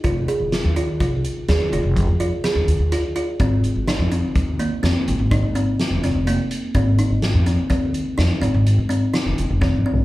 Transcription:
<<
  \new Staff \with { instrumentName = "Kalimba" } { \time 7/4 \key aes \major \tempo 4 = 125 f'8 aes'4 f'8 f'4 aes'8 f'4 f'8 aes'4 f'8 f'8 | c'4 ees'8 c'4 bes8 c'4 ees'8 c'4 c'8 bes4 | c'8 ees'4 c'8 c'4 ees'8 c'4 c'8 ees'4 c'8 c'8 | }
  \new Staff \with { instrumentName = "Upright bass" } { \clef bass \time 7/4 \key aes \major f,,8 r16 f,,8 ees,8 r16 c,8 r8 ees,16 r16 f,,16 f,,8 f,8 r8 ees,16 ees,16 ees,8 r8. | aes,,8 r16 aes,,8 f,8 r16 ees,8 r8 f,16 r16 aes,,16 aes,,8 aes,8 r8 f,,16 f,,16 f,,8 r8. | aes,,8 r16 aes,,8 f,8 r16 ees,8 r8 f,16 r16 aes,,16 aes,,8 aes,8 r8 f,,16 f,,16 f,,8 r8. | }
  \new DrumStaff \with { instrumentName = "Drums" } \drummode { \time 7/4 <hh bd>8 hh8 <hh sn>8 hh8 <hh bd>8 hh8 <hh sn>8 hh8 <hh bd>8 hh8 <hh sn>8 hh8 <hh sn>8 hh8 | <hh bd>8 hh8 <hh sn>8 hh8 <hh bd>8 hh8 <hh sn>8 hh8 <hh bd>8 hh8 <hh sn>8 <hh sn>8 hh8 hh8 | <hh bd>8 hh8 <hh sn>8 <hh sn>8 <hh bd>8 hh8 <hh sn>8 hh8 hh8 hh8 <hh sn>8 hh8 \tuplet 3/2 { <bd sn>8 toml8 tomfh8 } | }
>>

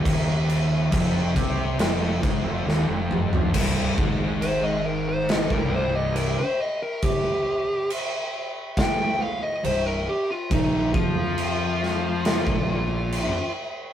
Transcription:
<<
  \new Staff \with { instrumentName = "Lead electric guitar" } { \time 4/4 \key c \minor \tempo 4 = 69 r1 | r4 c''16 ees''16 bes'16 c''16 ees''16 bes'16 c''16 ees''16 bes'16 c''16 ees''16 bes'16 | g'4 r4 g''8 f''16 ees''16 c''16 bes'16 g'16 f'16 | ees'8 f'2. r8 | }
  \new Staff \with { instrumentName = "Distorted electric guitar" } { \clef bass \time 4/4 \key c \minor ees,4 f,8 c8 f,8 aes,16 f,16 ees,16 f,8. | c,8 aes,4.~ aes,16 c,4 r8. | r2. c,8 r8 | bes,8 f4.~ f16 bes,4 r8. | }
  \new Staff \with { instrumentName = "Fingered electric bass" } { \clef bass \time 4/4 \key c \minor ees,,4 f,,8 c,8 f,,8 aes,,16 f,,16 ees,,16 f,,8. | c,,8 aes,,4.~ aes,,16 c,,4 r8. | r2. c,,8 r8 | bes,,8 f,4.~ f,16 bes,,4 r8. | }
  \new DrumStaff \with { instrumentName = "Drums" } \drummode { \time 4/4 <cymc bd>8 cymc8 <cymc bd>8 <cymc bd>8 <cymc sn>8 <cymc bd>8 sn8 toml16 tomfh16 | <cymc bd>8 bd8 cymc4 <cymc sn>16 bd8. cymc4 | <cymc bd>4 cymc4 <cymc bd sn>4 cymc4 | <cymc bd>8 bd8 cymc8 sn8 <cymc sn>16 bd8. cymc4 | }
>>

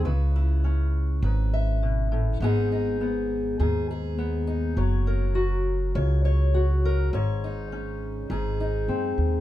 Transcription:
<<
  \new Staff \with { instrumentName = "Steel-string acoustic guitar" } { \time 4/4 \key cis \minor \tempo 4 = 102 << { b'8 e'4. b'8 e''4. | <b dis' gis'>8 dis'4. gis'8 gis'4 dis'8 | cis''8 ais'4. cis''8 cis''4 ais'8 | cis''8 dis'4. gis'8 dis'4. | } \\ { cis4 cis'4 gis,4 b,8 a,8 | gis,4 b4 gis,4 b4 | fis4 fis'4 cis4 fis'4 | gis,4 cis'4 gis,4 bis4 | } >> }
  \new Staff \with { instrumentName = "Upright bass" } { \clef bass \time 4/4 \key cis \minor cis,2 gis,,2 | gis,,2 dis,2 | fis,,2 cis,2 | gis,,2 gis,,4 fis,8 dis,8 | }
>>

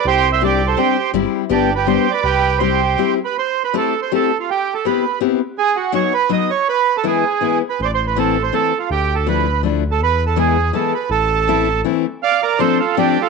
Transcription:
<<
  \new Staff \with { instrumentName = "Accordion" } { \time 3/4 \key c \major \tempo 4 = 163 \tuplet 3/2 { <g' c''>4 <c'' e''>8 <g' d''>4 <a' c''>8 } <g' c''>4 | r4 \tuplet 3/2 { <d' g'>4 <g' b'>8 <g' c''>4 <b' d''>8 } | <g' b'>4 <g' c''>4~ \tuplet 3/2 { <g' c''>8. r16 b'8 } | \key a \minor \tuplet 3/2 { c''4 b'8 a'4 c''8 a'4 f'8 } |
\tuplet 3/2 { g'4 a'8 } b'4 r4 | gis'8 fis'8 cis''8 b'8 dis''8 cis''8 | b'8. a'16 gis'4~ \tuplet 3/2 { gis'8. r16 b'8 } | \tuplet 3/2 { c''16 d''16 c''8 b'8 a'4 c''8 a'4 f'8 } |
\tuplet 3/2 { g'4 a'8 } b'4 \tuplet 3/2 { r4 a'8 } | \tuplet 3/2 { b'4 a'8 } gis'4 a'8 b'8 | a'2 r4 | \key d \minor <d'' f''>8 <bes' d''>8 <a' c''>8 <f' a'>8 \tuplet 3/2 { <d' g'>4 <f' a'>8 } | }
  \new Staff \with { instrumentName = "Steel-string acoustic guitar" } { \time 3/4 \key c \major r4 <g c' d' g'>8 r8 <g c' d' g'>8 r8 | <g c' e' g'>4 <g b d' g'>8 r8 <g b d' g'>8 r8 | r4 <g c' e' g'>8 r8 <g c' e' g'>8 r8 | \key a \minor r4 <a c' e' g'>8 r8 <a c' e' g'>8 r8 |
r4 <b c' e' g'>8 r8 <b c' e' g'>8 r8 | r4 <fis b dis' fis'>8 r8 <fis b dis' fis'>8 r8 | r4 <e gis b e'>8 r8 <e gis b e'>8 r8 | r4 <e a c' e'>8 r8 <e a c' e'>8 r8 |
r4 <f a d' e'>8 r8 <f a d' e'>8 r8 | r4 <e gis b e'>8 r8 <e gis b e'>8 r8 | r4 <e a c' e'>8 r8 <e a c' e'>8 r8 | \key d \minor r4 <f a c' d'>8 r8 <f a c' d'>8 r8 | }
  \new Staff \with { instrumentName = "Analog synth bass" } { \clef bass \time 3/4 \key c \major c,2. | g,,8 r8 g,,2 | c,2. | \key a \minor r2. |
r2. | r2. | r2. | a,,2. |
d,2. | e,2. | a,,2. | \key d \minor r2. | }
>>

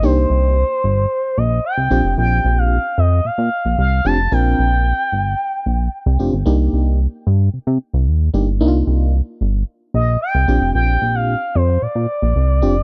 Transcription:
<<
  \new Staff \with { instrumentName = "Analog synth lead" } { \time 4/4 \key c \minor \tempo 4 = 112 c''2~ c''8 ees''8 g''4 | g''8. f''8. ees''8 f''4 f''8 a''8 | g''2.~ g''8 r8 | r1 |
r2 r8 ees''8 g''4 | g''8. f''8. c''8 d''2 | }
  \new Staff \with { instrumentName = "FM electric piano" } { \time 4/4 \key c \minor <bes d' ees' g'>4 r2 r8 <c' d' f' g'>8~ | <c' d' f' g'>4 r2 r8 <c' d' f' g'>16 r16 | <c' d' f' bes'>4 r2 r8 <c' d' f' g'>16 r16 | <bes d' ees' g'>4 r2 r8 <bes d' ees' g'>16 r16 |
<bes d' ees' e' f'>4 r2 r8 <c' d' f' g'>8~ | <c' d' f' g'>4 r2 r8 <c' d' f' g'>16 r16 | }
  \new Staff \with { instrumentName = "Analog synth bass" } { \clef bass \time 4/4 \key c \minor c,8 c,8. r16 g,,8 r8 bes,,8 r16 c,16 bes,,16 f,,16 | bes,,8 bes,,8. r16 f,8 bes,16 bes,16 r16 bes,,16 c,8 f,,8 | bes,,8 bes,,8. r16 g,,8 r8 bes,,8 r16 c,16 f,,16 g,,16 | c,8 c,8. r16 g,8 c16 c16 r16 c,16 ees,8 g,,8 |
c,8 c,8. r16 g,,8 r8 bes,,8 r16 c,16 bes,,16 f,,16 | bes,,8 bes,,8. r16 f,8 bes,16 bes,16 r16 bes,,16 c,8 f,,8 | }
>>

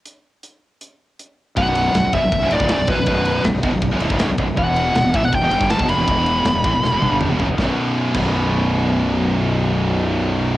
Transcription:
<<
  \new Staff \with { instrumentName = "Lead electric guitar" } { \time 4/4 \key b \minor \tempo 4 = 159 r1 | fis''4. e''4 d''4 b'8~ | b'4 r2. | fis''4. e''16 fis''16 g''4 a''8 b''8~ |
b''2. r4 | r1 | r1 | }
  \new Staff \with { instrumentName = "Distorted electric guitar" } { \clef bass \time 4/4 \key b \minor r1 | <b,, fis, b,>4 <b,, fis,>16 <b,, fis,>16 <e, b,>16 <b,, fis,>16 <b,, fis,>16 <b,, fis,>16 <d, a,>16 <cis, gis, cis>8 <b,, fis,>16 <b,, fis,>16 <b,, fis,>16 | <b,, fis, b,>4 <b,, fis,>16 <b,, fis,>16 <e, b,>16 <b,, fis,>16 <b,, fis,>16 <b,, fis,>16 <d, a,>16 <cis, gis, cis>8 <b,, fis,>16 <b,, fis,>16 <b,, fis,>16 | <e, b, e>4 <e, b,>16 <e, b,>16 <a, e>16 <e, b,>16 <e, b,>16 <e, b,>16 <g, d>16 <g, d g>8 <e, b,>16 <fis, cis>16 <e, b,>16 |
<e, b, e>4 <e, b,>16 <e, b,>16 <a, e>16 <e, b,>16 <e, b,>16 <e, b,>16 <g, d>16 <g, d g>8 <e, b,>16 <fis, cis>16 <e, b,>16 | <b,, fis, b,>16 r4 r16 <b,, fis, b,>2~ <b,, fis, b,>8~ | <b,, fis, b,>1 | }
  \new Staff \with { instrumentName = "Distorted electric guitar" } { \clef bass \time 4/4 \key b \minor r1 | <b,, fis, b,>4 <b,, fis,>16 <b,, fis,>16 <e, b,>16 <b,, fis,>16 <b,, fis,>16 <b,, fis,>16 <d, a,>16 <cis, gis, cis>8 <b,, fis,>16 <b,, fis,>16 <b,, fis,>16 | <b,, fis, b,>4 <b,, fis,>16 <b,, fis,>16 <e, b,>16 <b,, fis,>16 <b,, fis,>16 <b,, fis,>16 <d, a,>16 <cis, gis, cis>8 <b,, fis,>16 <b,, fis,>16 <b,, fis,>16 | <e, b, e>4 <e, b,>16 <e, b,>16 <a, e>16 <e, b,>16 <e, b,>16 <e, b,>16 <g, d>16 <g, d g>8 <e, b,>16 <fis, cis>16 <e, b,>16 |
<e, b, e>4 <e, b,>16 <e, b,>16 <a, e>16 <e, b,>16 <e, b,>16 <e, b,>16 <g, d>16 <g, d g>8 <e, b,>16 <fis, cis>16 <e, b,>16 | <b,, fis, b,>16 r4 r16 <b,, fis, b,>2~ <b,, fis, b,>8~ | <b,, fis, b,>1 | }
  \new Staff \with { instrumentName = "Distorted electric guitar" } { \clef bass \time 4/4 \key b \minor r1 | <b,, fis, b,>4 <b,, fis,>16 <b,, fis,>16 <e, b,>16 <b,, fis,>16 <b,, fis,>16 <b,, fis,>16 <d, a,>16 <cis, gis, cis>8 <b,, fis,>16 <b,, fis,>16 <b,, fis,>16 | <b,, fis, b,>4 <b,, fis,>16 <b,, fis,>16 <e, b,>16 <b,, fis,>16 <b,, fis,>16 <b,, fis,>16 <d, a,>16 <cis, gis, cis>8 <b,, fis,>16 <b,, fis,>16 <b,, fis,>16 | <e, b, e>4 <e, b,>16 <e, b,>16 <a, e>16 <e, b,>16 <e, b,>16 <e, b,>16 <g, d>16 <g, d g>8 <e, b,>16 <fis, cis>16 <e, b,>16 |
<e, b, e>4 <e, b,>16 <e, b,>16 <a, e>16 <e, b,>16 <e, b,>16 <e, b,>16 <g, d>16 <g, d g>8 <e, b,>16 <fis, cis>16 <e, b,>16 | <b,, fis, b,>16 r4 r16 <b,, fis, b,>2~ <b,, fis, b,>8~ | <b,, fis, b,>1 | }
  \new Staff \with { instrumentName = "Fingered electric bass" } { \clef bass \time 4/4 \key b \minor r1 | b,,,4 b,,,16 b,,,16 e,,16 b,,,16 b,,,16 b,,,16 d,,16 cis,,8 b,,,16 b,,,16 b,,,16 | b,,,4 b,,,16 b,,,16 e,,16 b,,,16 b,,,16 b,,,16 d,,16 cis,,8 b,,,16 b,,,16 b,,,16 | e,,4 e,,16 e,,16 a,,16 e,,16 e,,16 e,,16 g,,16 g,,8 e,,16 fis,,16 e,,16 |
e,,4 e,,16 e,,16 a,,16 e,,16 e,,16 e,,16 g,,16 g,,8 e,,16 fis,,16 e,,16 | b,,,16 r4 r16 b,,,2~ b,,,8~ | b,,,1 | }
  \new DrumStaff \with { instrumentName = "Drums" } \drummode { \time 4/4 hh4 hh4 hh4 hh4 | <bd cymr>8 cymr8 <cymr sn>8 <bd cymr>8 <bd cymr>8 cymr16 bd16 <cymr sn>8 <bd cymr>8 | <bd cymr>8 cymr8 <cymr sn>8 <bd cymr>8 <bd cymr>8 cymr16 bd16 <cymr sn>8 <bd cymr>8 | <bd cymr>8 cymr8 <cymr sn>8 <bd cymr>8 <bd cymr>8 cymr16 <bd sn>16 <cymr sn>16 bd16 cymr8 |
<bd cymr>8 cymr8 <cymr sn>8 <bd cymr>8 sn8 tommh8 toml8 tomfh8 | <bd sn>4 r8 <cymc bd>8 r4 r4 | r4 r4 r4 r4 | }
>>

